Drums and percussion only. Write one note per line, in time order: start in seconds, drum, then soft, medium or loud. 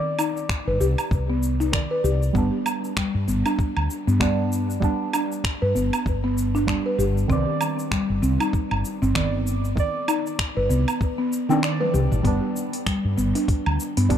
0.19 low woodblock medium
0.19 shaker medium
0.37 shaker soft
0.49 finger snap loud
0.49 kick medium
0.49 shaker soft
0.81 shaker medium
0.98 low woodblock medium
0.98 shaker soft
1.11 kick loud
1.11 shaker soft
1.43 shaker medium
1.61 shaker soft
1.73 finger snap medium
1.73 kick loud
1.73 shaker soft
2.05 shaker medium
2.23 shaker soft
2.35 kick loud
2.35 shaker soft
2.66 low woodblock medium
2.66 shaker medium
2.84 shaker soft
2.97 finger snap medium
2.97 kick medium
2.97 shaker soft
3.28 shaker medium
3.46 low woodblock medium
3.46 shaker soft
3.59 kick loud
3.59 shaker soft
3.77 low woodblock medium
3.90 shaker medium
4.08 shaker soft
4.20 finger snap medium
4.20 kick loud
4.20 shaker soft
4.52 shaker medium
4.70 shaker soft
4.82 kick medium
4.82 shaker soft
5.13 low woodblock medium
5.13 shaker medium
5.32 shaker soft
5.44 finger snap loud
5.44 kick loud
5.44 shaker soft
5.76 shaker medium
5.93 low woodblock medium
5.93 shaker soft
6.06 kick medium
6.06 shaker soft
6.38 shaker medium
6.56 shaker soft
6.68 finger snap medium
6.68 kick loud
6.68 shaker soft
7.00 shaker medium
7.17 shaker soft
7.30 kick medium
7.30 shaker soft
7.61 low woodblock medium
7.61 shaker medium
7.79 shaker soft
7.91 finger snap loud
7.91 kick medium
7.91 shaker soft
8.23 shaker medium
8.40 low woodblock medium
8.40 shaker soft
8.53 kick medium
8.53 shaker soft
8.71 low woodblock medium
8.85 shaker medium
9.03 shaker soft
9.15 finger snap medium
9.15 kick loud
9.15 shaker soft
9.47 shaker medium
9.65 shaker soft
9.77 kick loud
9.77 shaker soft
10.08 low woodblock medium
10.08 shaker medium
10.27 shaker soft
10.39 finger snap loud
10.39 kick medium
10.39 shaker soft
10.71 shaker medium
10.88 low woodblock medium
10.88 shaker soft
11.01 kick loud
11.01 shaker soft
11.33 shaker medium
11.51 shaker soft
11.63 finger snap medium
11.63 shaker soft
11.81 high tom soft
11.94 mid tom medium
11.94 shaker medium
12.12 mid tom medium
12.12 shaker soft
12.25 kick loud
12.25 open hi-hat soft
12.25 shaker soft
12.56 shaker medium
12.73 open hi-hat medium
12.73 shaker soft
12.86 finger snap medium
12.86 kick loud
12.86 open hi-hat soft
12.86 shaker soft
13.18 shaker medium
13.35 open hi-hat medium
13.35 shaker soft
13.48 kick loud
13.48 open hi-hat soft
13.48 shaker soft
13.66 low woodblock medium
13.80 shaker medium
13.97 open hi-hat medium
13.97 shaker soft
14.10 kick loud
14.10 open hi-hat soft
14.10 shaker soft